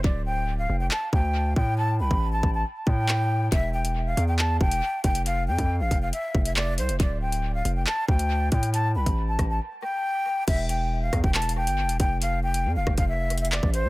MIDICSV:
0, 0, Header, 1, 4, 480
1, 0, Start_track
1, 0, Tempo, 434783
1, 46, Time_signature, 4, 2, 24, 8
1, 15336, End_track
2, 0, Start_track
2, 0, Title_t, "Flute"
2, 0, Program_c, 0, 73
2, 47, Note_on_c, 0, 74, 83
2, 243, Note_off_c, 0, 74, 0
2, 283, Note_on_c, 0, 79, 91
2, 623, Note_off_c, 0, 79, 0
2, 645, Note_on_c, 0, 77, 82
2, 842, Note_off_c, 0, 77, 0
2, 885, Note_on_c, 0, 79, 74
2, 984, Note_off_c, 0, 79, 0
2, 1005, Note_on_c, 0, 81, 98
2, 1202, Note_off_c, 0, 81, 0
2, 1246, Note_on_c, 0, 79, 85
2, 1697, Note_off_c, 0, 79, 0
2, 1726, Note_on_c, 0, 79, 89
2, 1923, Note_off_c, 0, 79, 0
2, 1965, Note_on_c, 0, 81, 91
2, 2162, Note_off_c, 0, 81, 0
2, 2205, Note_on_c, 0, 83, 79
2, 2544, Note_off_c, 0, 83, 0
2, 2566, Note_on_c, 0, 81, 77
2, 2763, Note_off_c, 0, 81, 0
2, 2805, Note_on_c, 0, 81, 72
2, 2904, Note_off_c, 0, 81, 0
2, 3163, Note_on_c, 0, 79, 97
2, 3841, Note_off_c, 0, 79, 0
2, 3887, Note_on_c, 0, 76, 99
2, 4083, Note_off_c, 0, 76, 0
2, 4124, Note_on_c, 0, 79, 78
2, 4463, Note_off_c, 0, 79, 0
2, 4485, Note_on_c, 0, 77, 84
2, 4682, Note_off_c, 0, 77, 0
2, 4724, Note_on_c, 0, 79, 78
2, 4823, Note_off_c, 0, 79, 0
2, 4846, Note_on_c, 0, 81, 83
2, 5043, Note_off_c, 0, 81, 0
2, 5089, Note_on_c, 0, 79, 90
2, 5539, Note_off_c, 0, 79, 0
2, 5565, Note_on_c, 0, 79, 88
2, 5762, Note_off_c, 0, 79, 0
2, 5807, Note_on_c, 0, 77, 84
2, 6003, Note_off_c, 0, 77, 0
2, 6044, Note_on_c, 0, 79, 86
2, 6384, Note_off_c, 0, 79, 0
2, 6406, Note_on_c, 0, 77, 76
2, 6603, Note_off_c, 0, 77, 0
2, 6647, Note_on_c, 0, 77, 79
2, 6745, Note_off_c, 0, 77, 0
2, 6764, Note_on_c, 0, 76, 89
2, 7103, Note_off_c, 0, 76, 0
2, 7125, Note_on_c, 0, 76, 81
2, 7224, Note_off_c, 0, 76, 0
2, 7246, Note_on_c, 0, 74, 89
2, 7443, Note_off_c, 0, 74, 0
2, 7486, Note_on_c, 0, 72, 75
2, 7683, Note_off_c, 0, 72, 0
2, 7728, Note_on_c, 0, 74, 79
2, 7924, Note_off_c, 0, 74, 0
2, 7964, Note_on_c, 0, 79, 88
2, 8303, Note_off_c, 0, 79, 0
2, 8326, Note_on_c, 0, 77, 81
2, 8523, Note_off_c, 0, 77, 0
2, 8566, Note_on_c, 0, 79, 74
2, 8664, Note_off_c, 0, 79, 0
2, 8686, Note_on_c, 0, 81, 96
2, 8883, Note_off_c, 0, 81, 0
2, 8927, Note_on_c, 0, 79, 85
2, 9378, Note_off_c, 0, 79, 0
2, 9408, Note_on_c, 0, 79, 91
2, 9604, Note_off_c, 0, 79, 0
2, 9646, Note_on_c, 0, 81, 97
2, 9842, Note_off_c, 0, 81, 0
2, 9886, Note_on_c, 0, 83, 78
2, 10224, Note_off_c, 0, 83, 0
2, 10246, Note_on_c, 0, 81, 76
2, 10443, Note_off_c, 0, 81, 0
2, 10485, Note_on_c, 0, 81, 72
2, 10584, Note_off_c, 0, 81, 0
2, 10843, Note_on_c, 0, 79, 98
2, 11521, Note_off_c, 0, 79, 0
2, 11565, Note_on_c, 0, 76, 103
2, 11762, Note_off_c, 0, 76, 0
2, 11803, Note_on_c, 0, 79, 78
2, 12143, Note_off_c, 0, 79, 0
2, 12167, Note_on_c, 0, 77, 83
2, 12363, Note_off_c, 0, 77, 0
2, 12406, Note_on_c, 0, 79, 84
2, 12505, Note_off_c, 0, 79, 0
2, 12527, Note_on_c, 0, 81, 90
2, 12723, Note_off_c, 0, 81, 0
2, 12769, Note_on_c, 0, 79, 86
2, 13219, Note_off_c, 0, 79, 0
2, 13246, Note_on_c, 0, 79, 86
2, 13443, Note_off_c, 0, 79, 0
2, 13488, Note_on_c, 0, 77, 91
2, 13684, Note_off_c, 0, 77, 0
2, 13725, Note_on_c, 0, 79, 85
2, 14064, Note_off_c, 0, 79, 0
2, 14086, Note_on_c, 0, 77, 75
2, 14283, Note_off_c, 0, 77, 0
2, 14326, Note_on_c, 0, 77, 86
2, 14424, Note_off_c, 0, 77, 0
2, 14445, Note_on_c, 0, 76, 88
2, 14784, Note_off_c, 0, 76, 0
2, 14805, Note_on_c, 0, 76, 81
2, 14904, Note_off_c, 0, 76, 0
2, 14926, Note_on_c, 0, 74, 90
2, 15122, Note_off_c, 0, 74, 0
2, 15166, Note_on_c, 0, 72, 80
2, 15336, Note_off_c, 0, 72, 0
2, 15336, End_track
3, 0, Start_track
3, 0, Title_t, "808-style bass"
3, 0, Program_c, 1, 38
3, 47, Note_on_c, 1, 26, 114
3, 738, Note_off_c, 1, 26, 0
3, 766, Note_on_c, 1, 29, 105
3, 996, Note_off_c, 1, 29, 0
3, 1246, Note_on_c, 1, 38, 106
3, 1707, Note_off_c, 1, 38, 0
3, 1726, Note_on_c, 1, 45, 102
3, 2206, Note_on_c, 1, 36, 96
3, 2222, Note_off_c, 1, 45, 0
3, 2320, Note_off_c, 1, 36, 0
3, 2326, Note_on_c, 1, 33, 106
3, 2672, Note_off_c, 1, 33, 0
3, 2685, Note_on_c, 1, 33, 106
3, 2916, Note_off_c, 1, 33, 0
3, 3166, Note_on_c, 1, 45, 105
3, 3857, Note_off_c, 1, 45, 0
3, 3886, Note_on_c, 1, 28, 113
3, 4577, Note_off_c, 1, 28, 0
3, 4606, Note_on_c, 1, 40, 107
3, 5067, Note_off_c, 1, 40, 0
3, 5086, Note_on_c, 1, 28, 105
3, 5316, Note_off_c, 1, 28, 0
3, 5566, Note_on_c, 1, 29, 103
3, 6046, Note_on_c, 1, 41, 97
3, 6063, Note_off_c, 1, 29, 0
3, 6160, Note_off_c, 1, 41, 0
3, 6166, Note_on_c, 1, 41, 106
3, 6406, Note_on_c, 1, 33, 101
3, 6423, Note_off_c, 1, 41, 0
3, 6520, Note_off_c, 1, 33, 0
3, 6525, Note_on_c, 1, 29, 109
3, 6756, Note_off_c, 1, 29, 0
3, 7006, Note_on_c, 1, 29, 106
3, 7486, Note_on_c, 1, 36, 92
3, 7503, Note_off_c, 1, 29, 0
3, 7606, Note_on_c, 1, 29, 99
3, 7623, Note_off_c, 1, 36, 0
3, 7720, Note_off_c, 1, 29, 0
3, 7726, Note_on_c, 1, 26, 117
3, 8417, Note_off_c, 1, 26, 0
3, 8446, Note_on_c, 1, 29, 107
3, 8676, Note_off_c, 1, 29, 0
3, 8925, Note_on_c, 1, 38, 105
3, 9386, Note_off_c, 1, 38, 0
3, 9406, Note_on_c, 1, 45, 103
3, 9885, Note_on_c, 1, 36, 100
3, 9902, Note_off_c, 1, 45, 0
3, 10000, Note_off_c, 1, 36, 0
3, 10006, Note_on_c, 1, 33, 100
3, 10352, Note_off_c, 1, 33, 0
3, 10365, Note_on_c, 1, 33, 107
3, 10596, Note_off_c, 1, 33, 0
3, 11566, Note_on_c, 1, 28, 117
3, 12257, Note_off_c, 1, 28, 0
3, 12285, Note_on_c, 1, 40, 109
3, 12401, Note_off_c, 1, 40, 0
3, 12407, Note_on_c, 1, 28, 110
3, 12887, Note_on_c, 1, 31, 99
3, 12904, Note_off_c, 1, 28, 0
3, 13067, Note_on_c, 1, 28, 102
3, 13083, Note_off_c, 1, 31, 0
3, 13237, Note_off_c, 1, 28, 0
3, 13247, Note_on_c, 1, 29, 102
3, 13967, Note_on_c, 1, 41, 102
3, 13984, Note_off_c, 1, 29, 0
3, 14087, Note_on_c, 1, 29, 99
3, 14104, Note_off_c, 1, 41, 0
3, 14201, Note_off_c, 1, 29, 0
3, 14206, Note_on_c, 1, 29, 107
3, 14321, Note_off_c, 1, 29, 0
3, 14327, Note_on_c, 1, 29, 106
3, 15017, Note_off_c, 1, 29, 0
3, 15047, Note_on_c, 1, 33, 104
3, 15287, Note_on_c, 1, 41, 104
3, 15303, Note_off_c, 1, 33, 0
3, 15336, Note_off_c, 1, 41, 0
3, 15336, End_track
4, 0, Start_track
4, 0, Title_t, "Drums"
4, 47, Note_on_c, 9, 36, 121
4, 157, Note_off_c, 9, 36, 0
4, 1005, Note_on_c, 9, 39, 117
4, 1116, Note_off_c, 9, 39, 0
4, 1246, Note_on_c, 9, 36, 102
4, 1356, Note_off_c, 9, 36, 0
4, 1726, Note_on_c, 9, 36, 99
4, 1837, Note_off_c, 9, 36, 0
4, 2326, Note_on_c, 9, 36, 89
4, 2437, Note_off_c, 9, 36, 0
4, 2685, Note_on_c, 9, 36, 92
4, 2796, Note_off_c, 9, 36, 0
4, 3165, Note_on_c, 9, 36, 100
4, 3276, Note_off_c, 9, 36, 0
4, 3407, Note_on_c, 9, 39, 113
4, 3517, Note_off_c, 9, 39, 0
4, 3886, Note_on_c, 9, 36, 122
4, 3886, Note_on_c, 9, 42, 83
4, 3997, Note_off_c, 9, 36, 0
4, 3997, Note_off_c, 9, 42, 0
4, 4247, Note_on_c, 9, 42, 75
4, 4357, Note_off_c, 9, 42, 0
4, 4607, Note_on_c, 9, 42, 68
4, 4718, Note_off_c, 9, 42, 0
4, 4845, Note_on_c, 9, 39, 119
4, 4955, Note_off_c, 9, 39, 0
4, 5086, Note_on_c, 9, 36, 100
4, 5196, Note_off_c, 9, 36, 0
4, 5205, Note_on_c, 9, 42, 78
4, 5315, Note_off_c, 9, 42, 0
4, 5563, Note_on_c, 9, 42, 68
4, 5566, Note_on_c, 9, 36, 97
4, 5674, Note_off_c, 9, 42, 0
4, 5677, Note_off_c, 9, 36, 0
4, 5686, Note_on_c, 9, 42, 85
4, 5796, Note_off_c, 9, 42, 0
4, 5806, Note_on_c, 9, 42, 85
4, 5917, Note_off_c, 9, 42, 0
4, 6166, Note_on_c, 9, 36, 85
4, 6166, Note_on_c, 9, 42, 73
4, 6276, Note_off_c, 9, 42, 0
4, 6277, Note_off_c, 9, 36, 0
4, 6525, Note_on_c, 9, 36, 89
4, 6528, Note_on_c, 9, 42, 72
4, 6636, Note_off_c, 9, 36, 0
4, 6638, Note_off_c, 9, 42, 0
4, 6767, Note_on_c, 9, 42, 79
4, 6877, Note_off_c, 9, 42, 0
4, 7006, Note_on_c, 9, 36, 101
4, 7116, Note_off_c, 9, 36, 0
4, 7126, Note_on_c, 9, 42, 83
4, 7236, Note_off_c, 9, 42, 0
4, 7247, Note_on_c, 9, 39, 123
4, 7357, Note_off_c, 9, 39, 0
4, 7484, Note_on_c, 9, 42, 74
4, 7594, Note_off_c, 9, 42, 0
4, 7606, Note_on_c, 9, 42, 78
4, 7716, Note_off_c, 9, 42, 0
4, 7726, Note_on_c, 9, 36, 125
4, 7726, Note_on_c, 9, 42, 86
4, 7836, Note_off_c, 9, 36, 0
4, 7836, Note_off_c, 9, 42, 0
4, 8086, Note_on_c, 9, 42, 73
4, 8196, Note_off_c, 9, 42, 0
4, 8447, Note_on_c, 9, 42, 71
4, 8558, Note_off_c, 9, 42, 0
4, 8685, Note_on_c, 9, 39, 115
4, 8795, Note_off_c, 9, 39, 0
4, 8925, Note_on_c, 9, 36, 101
4, 9036, Note_off_c, 9, 36, 0
4, 9045, Note_on_c, 9, 42, 78
4, 9156, Note_off_c, 9, 42, 0
4, 9403, Note_on_c, 9, 42, 66
4, 9406, Note_on_c, 9, 36, 101
4, 9514, Note_off_c, 9, 42, 0
4, 9516, Note_off_c, 9, 36, 0
4, 9526, Note_on_c, 9, 42, 85
4, 9636, Note_off_c, 9, 42, 0
4, 9646, Note_on_c, 9, 42, 83
4, 9757, Note_off_c, 9, 42, 0
4, 10006, Note_on_c, 9, 36, 85
4, 10007, Note_on_c, 9, 42, 72
4, 10116, Note_off_c, 9, 36, 0
4, 10117, Note_off_c, 9, 42, 0
4, 10365, Note_on_c, 9, 36, 90
4, 10366, Note_on_c, 9, 37, 91
4, 10367, Note_on_c, 9, 42, 70
4, 10475, Note_off_c, 9, 36, 0
4, 10476, Note_off_c, 9, 37, 0
4, 10478, Note_off_c, 9, 42, 0
4, 11566, Note_on_c, 9, 36, 124
4, 11566, Note_on_c, 9, 42, 87
4, 11566, Note_on_c, 9, 49, 100
4, 11676, Note_off_c, 9, 36, 0
4, 11676, Note_off_c, 9, 42, 0
4, 11676, Note_off_c, 9, 49, 0
4, 11805, Note_on_c, 9, 42, 77
4, 11915, Note_off_c, 9, 42, 0
4, 12285, Note_on_c, 9, 36, 89
4, 12286, Note_on_c, 9, 37, 91
4, 12287, Note_on_c, 9, 42, 75
4, 12395, Note_off_c, 9, 36, 0
4, 12396, Note_off_c, 9, 37, 0
4, 12397, Note_off_c, 9, 42, 0
4, 12406, Note_on_c, 9, 36, 104
4, 12517, Note_off_c, 9, 36, 0
4, 12525, Note_on_c, 9, 39, 121
4, 12526, Note_on_c, 9, 42, 49
4, 12606, Note_off_c, 9, 42, 0
4, 12606, Note_on_c, 9, 42, 64
4, 12635, Note_off_c, 9, 39, 0
4, 12686, Note_off_c, 9, 42, 0
4, 12686, Note_on_c, 9, 42, 82
4, 12796, Note_off_c, 9, 42, 0
4, 12885, Note_on_c, 9, 42, 83
4, 12995, Note_off_c, 9, 42, 0
4, 13128, Note_on_c, 9, 42, 71
4, 13238, Note_off_c, 9, 42, 0
4, 13244, Note_on_c, 9, 42, 73
4, 13247, Note_on_c, 9, 36, 101
4, 13354, Note_off_c, 9, 42, 0
4, 13357, Note_off_c, 9, 36, 0
4, 13486, Note_on_c, 9, 42, 88
4, 13597, Note_off_c, 9, 42, 0
4, 13847, Note_on_c, 9, 42, 78
4, 13957, Note_off_c, 9, 42, 0
4, 14206, Note_on_c, 9, 36, 92
4, 14207, Note_on_c, 9, 37, 92
4, 14316, Note_off_c, 9, 36, 0
4, 14317, Note_off_c, 9, 37, 0
4, 14325, Note_on_c, 9, 42, 86
4, 14327, Note_on_c, 9, 36, 100
4, 14435, Note_off_c, 9, 42, 0
4, 14437, Note_off_c, 9, 36, 0
4, 14687, Note_on_c, 9, 42, 65
4, 14766, Note_off_c, 9, 42, 0
4, 14766, Note_on_c, 9, 42, 66
4, 14846, Note_off_c, 9, 42, 0
4, 14846, Note_on_c, 9, 42, 68
4, 14927, Note_on_c, 9, 39, 126
4, 14956, Note_off_c, 9, 42, 0
4, 15038, Note_off_c, 9, 39, 0
4, 15047, Note_on_c, 9, 36, 97
4, 15157, Note_off_c, 9, 36, 0
4, 15165, Note_on_c, 9, 42, 76
4, 15275, Note_off_c, 9, 42, 0
4, 15336, End_track
0, 0, End_of_file